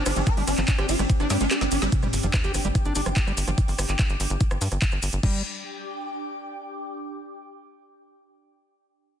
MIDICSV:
0, 0, Header, 1, 8, 480
1, 0, Start_track
1, 0, Tempo, 413793
1, 311, Time_signature, 4, 2, 24, 8
1, 10672, End_track
2, 0, Start_track
2, 0, Title_t, "Analog synth pad"
2, 0, Program_c, 0, 89
2, 0, Note_on_c, 0, 62, 81
2, 0, Note_on_c, 0, 67, 72
2, 0, Note_on_c, 0, 79, 70
2, 0, Note_on_c, 0, 86, 73
2, 2218, Note_off_c, 0, 62, 0
2, 2231, Note_off_c, 0, 67, 0
2, 2231, Note_off_c, 0, 79, 0
2, 2231, Note_off_c, 0, 86, 0
2, 2232, Note_on_c, 0, 62, 70
2, 2311, Note_on_c, 0, 67, 70
2, 2547, Note_on_c, 0, 79, 91
2, 2905, Note_on_c, 0, 86, 89
2, 6057, Note_off_c, 0, 62, 0
2, 6071, Note_off_c, 0, 67, 0
2, 6071, Note_off_c, 0, 79, 0
2, 6071, Note_off_c, 0, 86, 0
2, 6071, Note_on_c, 0, 62, 75
2, 6143, Note_on_c, 0, 67, 76
2, 6215, Note_on_c, 0, 79, 76
2, 6288, Note_on_c, 0, 86, 77
2, 7945, Note_off_c, 0, 62, 0
2, 7945, Note_off_c, 0, 67, 0
2, 7945, Note_off_c, 0, 79, 0
2, 7945, Note_off_c, 0, 86, 0
2, 10672, End_track
3, 0, Start_track
3, 0, Title_t, "Digital synth lead"
3, 0, Program_c, 1, 84
3, 71, Note_on_c, 1, 62, 68
3, 135, Note_off_c, 1, 62, 0
3, 191, Note_on_c, 1, 62, 66
3, 255, Note_off_c, 1, 62, 0
3, 311, Note_on_c, 1, 70, 104
3, 375, Note_off_c, 1, 70, 0
3, 431, Note_on_c, 1, 62, 65
3, 496, Note_off_c, 1, 62, 0
3, 551, Note_on_c, 1, 62, 64
3, 615, Note_off_c, 1, 62, 0
3, 791, Note_on_c, 1, 62, 68
3, 856, Note_off_c, 1, 62, 0
3, 911, Note_on_c, 1, 62, 65
3, 976, Note_off_c, 1, 62, 0
3, 1031, Note_on_c, 1, 65, 88
3, 1096, Note_off_c, 1, 65, 0
3, 1151, Note_on_c, 1, 62, 65
3, 1216, Note_off_c, 1, 62, 0
3, 1391, Note_on_c, 1, 62, 65
3, 1456, Note_off_c, 1, 62, 0
3, 1511, Note_on_c, 1, 62, 64
3, 1575, Note_off_c, 1, 62, 0
3, 1631, Note_on_c, 1, 62, 67
3, 1696, Note_off_c, 1, 62, 0
3, 1752, Note_on_c, 1, 62, 95
3, 1816, Note_off_c, 1, 62, 0
3, 1871, Note_on_c, 1, 62, 64
3, 1936, Note_off_c, 1, 62, 0
3, 1991, Note_on_c, 1, 62, 66
3, 2056, Note_off_c, 1, 62, 0
3, 2111, Note_on_c, 1, 62, 67
3, 2176, Note_off_c, 1, 62, 0
3, 10672, End_track
4, 0, Start_track
4, 0, Title_t, "Ambient pad"
4, 0, Program_c, 2, 92
4, 0, Note_on_c, 2, 60, 84
4, 2241, Note_off_c, 2, 60, 0
4, 10672, End_track
5, 0, Start_track
5, 0, Title_t, "Acid bass"
5, 0, Program_c, 3, 38
5, 71, Note_on_c, 3, 62, 77
5, 132, Note_off_c, 3, 62, 0
5, 190, Note_on_c, 3, 53, 77
5, 228, Note_off_c, 3, 53, 0
5, 431, Note_on_c, 3, 55, 78
5, 492, Note_off_c, 3, 55, 0
5, 671, Note_on_c, 3, 53, 79
5, 708, Note_off_c, 3, 53, 0
5, 910, Note_on_c, 3, 67, 106
5, 1003, Note_off_c, 3, 67, 0
5, 1151, Note_on_c, 3, 55, 106
5, 1188, Note_off_c, 3, 55, 0
5, 1391, Note_on_c, 3, 62, 76
5, 1484, Note_off_c, 3, 62, 0
5, 1511, Note_on_c, 3, 55, 76
5, 1603, Note_off_c, 3, 55, 0
5, 1631, Note_on_c, 3, 56, 76
5, 1693, Note_off_c, 3, 56, 0
5, 1751, Note_on_c, 3, 67, 87
5, 1813, Note_off_c, 3, 67, 0
5, 1871, Note_on_c, 3, 55, 78
5, 1908, Note_off_c, 3, 55, 0
5, 2111, Note_on_c, 3, 55, 78
5, 2204, Note_off_c, 3, 55, 0
5, 2351, Note_on_c, 3, 55, 74
5, 2413, Note_off_c, 3, 55, 0
5, 2591, Note_on_c, 3, 53, 81
5, 2628, Note_off_c, 3, 53, 0
5, 2831, Note_on_c, 3, 67, 104
5, 2924, Note_off_c, 3, 67, 0
5, 3072, Note_on_c, 3, 55, 107
5, 3108, Note_off_c, 3, 55, 0
5, 3312, Note_on_c, 3, 62, 75
5, 3404, Note_off_c, 3, 62, 0
5, 3432, Note_on_c, 3, 62, 75
5, 3493, Note_off_c, 3, 62, 0
5, 3551, Note_on_c, 3, 53, 73
5, 3588, Note_off_c, 3, 53, 0
5, 3791, Note_on_c, 3, 55, 78
5, 3853, Note_off_c, 3, 55, 0
5, 4031, Note_on_c, 3, 53, 77
5, 4068, Note_off_c, 3, 53, 0
5, 6071, Note_on_c, 3, 55, 95
5, 6294, Note_off_c, 3, 55, 0
5, 10672, End_track
6, 0, Start_track
6, 0, Title_t, "Analog synth bass"
6, 0, Program_c, 4, 38
6, 71, Note_on_c, 4, 31, 102
6, 151, Note_off_c, 4, 31, 0
6, 191, Note_on_c, 4, 31, 93
6, 271, Note_off_c, 4, 31, 0
6, 431, Note_on_c, 4, 31, 87
6, 511, Note_off_c, 4, 31, 0
6, 551, Note_on_c, 4, 31, 100
6, 631, Note_off_c, 4, 31, 0
6, 671, Note_on_c, 4, 31, 94
6, 751, Note_off_c, 4, 31, 0
6, 911, Note_on_c, 4, 31, 89
6, 991, Note_off_c, 4, 31, 0
6, 1031, Note_on_c, 4, 31, 101
6, 1111, Note_off_c, 4, 31, 0
6, 1151, Note_on_c, 4, 31, 99
6, 1231, Note_off_c, 4, 31, 0
6, 1392, Note_on_c, 4, 31, 83
6, 1471, Note_off_c, 4, 31, 0
6, 1511, Note_on_c, 4, 43, 103
6, 1591, Note_off_c, 4, 43, 0
6, 1632, Note_on_c, 4, 31, 97
6, 1711, Note_off_c, 4, 31, 0
6, 1871, Note_on_c, 4, 31, 87
6, 1951, Note_off_c, 4, 31, 0
6, 1991, Note_on_c, 4, 31, 105
6, 2071, Note_off_c, 4, 31, 0
6, 2112, Note_on_c, 4, 31, 91
6, 2191, Note_off_c, 4, 31, 0
6, 2352, Note_on_c, 4, 31, 87
6, 2431, Note_off_c, 4, 31, 0
6, 2472, Note_on_c, 4, 31, 96
6, 2551, Note_off_c, 4, 31, 0
6, 2592, Note_on_c, 4, 31, 91
6, 2671, Note_off_c, 4, 31, 0
6, 2832, Note_on_c, 4, 31, 90
6, 2911, Note_off_c, 4, 31, 0
6, 2951, Note_on_c, 4, 31, 98
6, 3031, Note_off_c, 4, 31, 0
6, 3072, Note_on_c, 4, 31, 93
6, 3151, Note_off_c, 4, 31, 0
6, 3312, Note_on_c, 4, 31, 85
6, 3391, Note_off_c, 4, 31, 0
6, 3432, Note_on_c, 4, 31, 104
6, 3511, Note_off_c, 4, 31, 0
6, 3551, Note_on_c, 4, 31, 94
6, 3631, Note_off_c, 4, 31, 0
6, 3791, Note_on_c, 4, 31, 87
6, 3871, Note_off_c, 4, 31, 0
6, 3911, Note_on_c, 4, 31, 99
6, 3991, Note_off_c, 4, 31, 0
6, 4031, Note_on_c, 4, 31, 92
6, 4111, Note_off_c, 4, 31, 0
6, 4271, Note_on_c, 4, 31, 90
6, 4351, Note_off_c, 4, 31, 0
6, 4391, Note_on_c, 4, 31, 100
6, 4471, Note_off_c, 4, 31, 0
6, 4511, Note_on_c, 4, 31, 93
6, 4591, Note_off_c, 4, 31, 0
6, 4751, Note_on_c, 4, 31, 86
6, 4831, Note_off_c, 4, 31, 0
6, 4871, Note_on_c, 4, 31, 98
6, 4951, Note_off_c, 4, 31, 0
6, 4991, Note_on_c, 4, 31, 94
6, 5071, Note_off_c, 4, 31, 0
6, 5231, Note_on_c, 4, 31, 85
6, 5311, Note_off_c, 4, 31, 0
6, 5351, Note_on_c, 4, 43, 104
6, 5431, Note_off_c, 4, 43, 0
6, 5471, Note_on_c, 4, 31, 92
6, 5551, Note_off_c, 4, 31, 0
6, 5711, Note_on_c, 4, 31, 88
6, 5791, Note_off_c, 4, 31, 0
6, 5831, Note_on_c, 4, 31, 100
6, 5911, Note_off_c, 4, 31, 0
6, 5951, Note_on_c, 4, 31, 91
6, 6031, Note_off_c, 4, 31, 0
6, 6071, Note_on_c, 4, 31, 98
6, 6294, Note_off_c, 4, 31, 0
6, 10672, End_track
7, 0, Start_track
7, 0, Title_t, "Sub drop"
7, 0, Program_c, 5, 103
7, 2231, Note_on_c, 5, 60, 76
7, 4151, Note_off_c, 5, 60, 0
7, 10672, End_track
8, 0, Start_track
8, 0, Title_t, "Drums"
8, 65, Note_on_c, 9, 70, 86
8, 71, Note_on_c, 9, 37, 85
8, 71, Note_on_c, 9, 46, 105
8, 71, Note_on_c, 9, 51, 89
8, 181, Note_off_c, 9, 70, 0
8, 186, Note_on_c, 9, 70, 37
8, 187, Note_off_c, 9, 37, 0
8, 187, Note_off_c, 9, 46, 0
8, 187, Note_off_c, 9, 51, 0
8, 191, Note_on_c, 9, 42, 57
8, 302, Note_off_c, 9, 70, 0
8, 307, Note_off_c, 9, 42, 0
8, 309, Note_on_c, 9, 70, 53
8, 311, Note_on_c, 9, 36, 116
8, 311, Note_on_c, 9, 37, 40
8, 311, Note_on_c, 9, 42, 81
8, 425, Note_off_c, 9, 70, 0
8, 427, Note_off_c, 9, 36, 0
8, 427, Note_off_c, 9, 37, 0
8, 427, Note_off_c, 9, 42, 0
8, 431, Note_on_c, 9, 46, 62
8, 433, Note_on_c, 9, 70, 24
8, 547, Note_off_c, 9, 46, 0
8, 548, Note_off_c, 9, 70, 0
8, 548, Note_on_c, 9, 70, 86
8, 551, Note_on_c, 9, 37, 41
8, 551, Note_on_c, 9, 46, 106
8, 551, Note_on_c, 9, 51, 82
8, 664, Note_off_c, 9, 70, 0
8, 666, Note_on_c, 9, 70, 39
8, 667, Note_off_c, 9, 37, 0
8, 667, Note_off_c, 9, 46, 0
8, 667, Note_off_c, 9, 51, 0
8, 671, Note_on_c, 9, 39, 39
8, 671, Note_on_c, 9, 42, 58
8, 782, Note_off_c, 9, 70, 0
8, 786, Note_on_c, 9, 70, 54
8, 787, Note_off_c, 9, 39, 0
8, 787, Note_off_c, 9, 42, 0
8, 791, Note_on_c, 9, 36, 116
8, 791, Note_on_c, 9, 39, 127
8, 791, Note_on_c, 9, 42, 87
8, 902, Note_off_c, 9, 70, 0
8, 907, Note_off_c, 9, 36, 0
8, 907, Note_off_c, 9, 39, 0
8, 907, Note_off_c, 9, 42, 0
8, 907, Note_on_c, 9, 70, 25
8, 911, Note_on_c, 9, 37, 78
8, 911, Note_on_c, 9, 42, 37
8, 1023, Note_off_c, 9, 70, 0
8, 1027, Note_off_c, 9, 37, 0
8, 1027, Note_off_c, 9, 42, 0
8, 1030, Note_on_c, 9, 70, 90
8, 1031, Note_on_c, 9, 46, 101
8, 1031, Note_on_c, 9, 51, 79
8, 1146, Note_off_c, 9, 70, 0
8, 1147, Note_off_c, 9, 46, 0
8, 1147, Note_off_c, 9, 51, 0
8, 1151, Note_on_c, 9, 37, 40
8, 1151, Note_on_c, 9, 42, 59
8, 1153, Note_on_c, 9, 70, 40
8, 1267, Note_off_c, 9, 37, 0
8, 1267, Note_off_c, 9, 42, 0
8, 1269, Note_off_c, 9, 70, 0
8, 1271, Note_on_c, 9, 36, 119
8, 1271, Note_on_c, 9, 42, 88
8, 1272, Note_on_c, 9, 70, 51
8, 1387, Note_off_c, 9, 36, 0
8, 1387, Note_off_c, 9, 42, 0
8, 1388, Note_off_c, 9, 70, 0
8, 1390, Note_on_c, 9, 70, 27
8, 1391, Note_on_c, 9, 37, 40
8, 1391, Note_on_c, 9, 42, 39
8, 1506, Note_off_c, 9, 70, 0
8, 1507, Note_off_c, 9, 37, 0
8, 1507, Note_off_c, 9, 42, 0
8, 1507, Note_on_c, 9, 70, 85
8, 1511, Note_on_c, 9, 38, 61
8, 1511, Note_on_c, 9, 46, 101
8, 1511, Note_on_c, 9, 51, 83
8, 1623, Note_off_c, 9, 70, 0
8, 1627, Note_off_c, 9, 38, 0
8, 1627, Note_off_c, 9, 46, 0
8, 1627, Note_off_c, 9, 51, 0
8, 1628, Note_on_c, 9, 70, 39
8, 1631, Note_on_c, 9, 42, 57
8, 1744, Note_off_c, 9, 70, 0
8, 1747, Note_off_c, 9, 42, 0
8, 1747, Note_on_c, 9, 70, 50
8, 1751, Note_on_c, 9, 38, 77
8, 1751, Note_on_c, 9, 39, 120
8, 1751, Note_on_c, 9, 42, 87
8, 1863, Note_off_c, 9, 70, 0
8, 1867, Note_off_c, 9, 38, 0
8, 1867, Note_off_c, 9, 39, 0
8, 1867, Note_off_c, 9, 42, 0
8, 1871, Note_on_c, 9, 38, 76
8, 1871, Note_on_c, 9, 42, 40
8, 1877, Note_on_c, 9, 70, 25
8, 1986, Note_off_c, 9, 70, 0
8, 1986, Note_on_c, 9, 70, 87
8, 1987, Note_off_c, 9, 38, 0
8, 1987, Note_off_c, 9, 42, 0
8, 1991, Note_on_c, 9, 46, 103
8, 1991, Note_on_c, 9, 51, 83
8, 2102, Note_off_c, 9, 70, 0
8, 2107, Note_off_c, 9, 46, 0
8, 2107, Note_off_c, 9, 51, 0
8, 2111, Note_on_c, 9, 38, 91
8, 2111, Note_on_c, 9, 42, 57
8, 2114, Note_on_c, 9, 70, 42
8, 2227, Note_off_c, 9, 38, 0
8, 2227, Note_off_c, 9, 42, 0
8, 2230, Note_off_c, 9, 70, 0
8, 2230, Note_on_c, 9, 70, 50
8, 2231, Note_on_c, 9, 36, 117
8, 2231, Note_on_c, 9, 42, 83
8, 2346, Note_off_c, 9, 70, 0
8, 2347, Note_off_c, 9, 36, 0
8, 2347, Note_off_c, 9, 42, 0
8, 2348, Note_on_c, 9, 70, 29
8, 2351, Note_on_c, 9, 37, 39
8, 2464, Note_off_c, 9, 70, 0
8, 2467, Note_off_c, 9, 37, 0
8, 2471, Note_on_c, 9, 46, 108
8, 2473, Note_on_c, 9, 70, 93
8, 2587, Note_off_c, 9, 46, 0
8, 2589, Note_off_c, 9, 70, 0
8, 2591, Note_on_c, 9, 42, 57
8, 2591, Note_on_c, 9, 70, 44
8, 2707, Note_off_c, 9, 42, 0
8, 2707, Note_off_c, 9, 70, 0
8, 2711, Note_on_c, 9, 36, 117
8, 2711, Note_on_c, 9, 37, 75
8, 2711, Note_on_c, 9, 39, 123
8, 2711, Note_on_c, 9, 42, 84
8, 2716, Note_on_c, 9, 70, 47
8, 2827, Note_off_c, 9, 36, 0
8, 2827, Note_off_c, 9, 37, 0
8, 2827, Note_off_c, 9, 39, 0
8, 2827, Note_off_c, 9, 42, 0
8, 2831, Note_on_c, 9, 42, 37
8, 2832, Note_off_c, 9, 70, 0
8, 2832, Note_on_c, 9, 70, 28
8, 2947, Note_off_c, 9, 42, 0
8, 2948, Note_off_c, 9, 70, 0
8, 2948, Note_on_c, 9, 70, 96
8, 2951, Note_on_c, 9, 37, 36
8, 2951, Note_on_c, 9, 46, 104
8, 3064, Note_off_c, 9, 70, 0
8, 3067, Note_off_c, 9, 37, 0
8, 3067, Note_off_c, 9, 46, 0
8, 3068, Note_on_c, 9, 70, 38
8, 3071, Note_on_c, 9, 42, 56
8, 3184, Note_off_c, 9, 70, 0
8, 3187, Note_off_c, 9, 42, 0
8, 3191, Note_on_c, 9, 36, 119
8, 3191, Note_on_c, 9, 37, 38
8, 3191, Note_on_c, 9, 42, 85
8, 3196, Note_on_c, 9, 70, 52
8, 3305, Note_off_c, 9, 70, 0
8, 3305, Note_on_c, 9, 70, 26
8, 3307, Note_off_c, 9, 36, 0
8, 3307, Note_off_c, 9, 37, 0
8, 3307, Note_off_c, 9, 42, 0
8, 3311, Note_on_c, 9, 42, 39
8, 3421, Note_off_c, 9, 70, 0
8, 3424, Note_on_c, 9, 70, 102
8, 3427, Note_off_c, 9, 42, 0
8, 3431, Note_on_c, 9, 46, 107
8, 3540, Note_off_c, 9, 70, 0
8, 3547, Note_off_c, 9, 46, 0
8, 3551, Note_on_c, 9, 37, 77
8, 3551, Note_on_c, 9, 42, 55
8, 3557, Note_on_c, 9, 70, 41
8, 3667, Note_off_c, 9, 37, 0
8, 3667, Note_off_c, 9, 42, 0
8, 3671, Note_off_c, 9, 70, 0
8, 3671, Note_on_c, 9, 36, 121
8, 3671, Note_on_c, 9, 39, 121
8, 3671, Note_on_c, 9, 42, 85
8, 3671, Note_on_c, 9, 70, 58
8, 3787, Note_off_c, 9, 36, 0
8, 3787, Note_off_c, 9, 39, 0
8, 3787, Note_off_c, 9, 42, 0
8, 3787, Note_off_c, 9, 70, 0
8, 3791, Note_on_c, 9, 37, 39
8, 3796, Note_on_c, 9, 70, 26
8, 3907, Note_off_c, 9, 37, 0
8, 3911, Note_on_c, 9, 46, 108
8, 3912, Note_off_c, 9, 70, 0
8, 3913, Note_on_c, 9, 70, 106
8, 4027, Note_off_c, 9, 46, 0
8, 4029, Note_off_c, 9, 70, 0
8, 4031, Note_on_c, 9, 37, 38
8, 4031, Note_on_c, 9, 42, 58
8, 4033, Note_on_c, 9, 70, 43
8, 4147, Note_off_c, 9, 37, 0
8, 4147, Note_off_c, 9, 42, 0
8, 4149, Note_off_c, 9, 70, 0
8, 4151, Note_on_c, 9, 36, 121
8, 4151, Note_on_c, 9, 42, 81
8, 4154, Note_on_c, 9, 70, 55
8, 4267, Note_off_c, 9, 36, 0
8, 4267, Note_off_c, 9, 42, 0
8, 4270, Note_off_c, 9, 70, 0
8, 4271, Note_on_c, 9, 46, 66
8, 4276, Note_on_c, 9, 70, 28
8, 4387, Note_off_c, 9, 46, 0
8, 4391, Note_off_c, 9, 70, 0
8, 4391, Note_on_c, 9, 37, 77
8, 4391, Note_on_c, 9, 46, 111
8, 4391, Note_on_c, 9, 70, 104
8, 4507, Note_off_c, 9, 37, 0
8, 4507, Note_off_c, 9, 46, 0
8, 4507, Note_off_c, 9, 70, 0
8, 4511, Note_on_c, 9, 39, 39
8, 4511, Note_on_c, 9, 42, 53
8, 4514, Note_on_c, 9, 70, 44
8, 4627, Note_off_c, 9, 39, 0
8, 4627, Note_off_c, 9, 42, 0
8, 4630, Note_off_c, 9, 70, 0
8, 4631, Note_on_c, 9, 36, 123
8, 4631, Note_on_c, 9, 37, 37
8, 4631, Note_on_c, 9, 39, 123
8, 4631, Note_on_c, 9, 42, 83
8, 4632, Note_on_c, 9, 70, 51
8, 4747, Note_off_c, 9, 36, 0
8, 4747, Note_off_c, 9, 37, 0
8, 4747, Note_off_c, 9, 39, 0
8, 4747, Note_off_c, 9, 42, 0
8, 4748, Note_off_c, 9, 70, 0
8, 4749, Note_on_c, 9, 70, 28
8, 4751, Note_on_c, 9, 42, 36
8, 4865, Note_off_c, 9, 70, 0
8, 4867, Note_off_c, 9, 42, 0
8, 4871, Note_on_c, 9, 46, 105
8, 4874, Note_on_c, 9, 70, 86
8, 4987, Note_off_c, 9, 46, 0
8, 4990, Note_off_c, 9, 70, 0
8, 4991, Note_on_c, 9, 42, 56
8, 4991, Note_on_c, 9, 70, 39
8, 5107, Note_off_c, 9, 42, 0
8, 5107, Note_off_c, 9, 70, 0
8, 5110, Note_on_c, 9, 70, 51
8, 5111, Note_on_c, 9, 36, 124
8, 5111, Note_on_c, 9, 42, 82
8, 5226, Note_off_c, 9, 70, 0
8, 5227, Note_off_c, 9, 36, 0
8, 5227, Note_off_c, 9, 42, 0
8, 5227, Note_on_c, 9, 70, 25
8, 5231, Note_on_c, 9, 37, 77
8, 5231, Note_on_c, 9, 42, 37
8, 5343, Note_off_c, 9, 70, 0
8, 5347, Note_off_c, 9, 37, 0
8, 5347, Note_off_c, 9, 42, 0
8, 5351, Note_on_c, 9, 46, 106
8, 5351, Note_on_c, 9, 70, 101
8, 5467, Note_off_c, 9, 46, 0
8, 5467, Note_off_c, 9, 70, 0
8, 5468, Note_on_c, 9, 70, 41
8, 5471, Note_on_c, 9, 37, 37
8, 5471, Note_on_c, 9, 42, 54
8, 5584, Note_off_c, 9, 70, 0
8, 5587, Note_off_c, 9, 37, 0
8, 5587, Note_off_c, 9, 42, 0
8, 5589, Note_on_c, 9, 70, 51
8, 5591, Note_on_c, 9, 36, 126
8, 5591, Note_on_c, 9, 39, 125
8, 5591, Note_on_c, 9, 42, 83
8, 5700, Note_off_c, 9, 70, 0
8, 5700, Note_on_c, 9, 70, 26
8, 5707, Note_off_c, 9, 36, 0
8, 5707, Note_off_c, 9, 39, 0
8, 5707, Note_off_c, 9, 42, 0
8, 5711, Note_on_c, 9, 37, 38
8, 5816, Note_off_c, 9, 70, 0
8, 5826, Note_on_c, 9, 70, 93
8, 5827, Note_off_c, 9, 37, 0
8, 5831, Note_on_c, 9, 46, 111
8, 5941, Note_off_c, 9, 70, 0
8, 5941, Note_on_c, 9, 70, 45
8, 5947, Note_off_c, 9, 46, 0
8, 5951, Note_on_c, 9, 42, 52
8, 6057, Note_off_c, 9, 70, 0
8, 6067, Note_off_c, 9, 42, 0
8, 6071, Note_on_c, 9, 36, 108
8, 6071, Note_on_c, 9, 49, 84
8, 6187, Note_off_c, 9, 36, 0
8, 6187, Note_off_c, 9, 49, 0
8, 10672, End_track
0, 0, End_of_file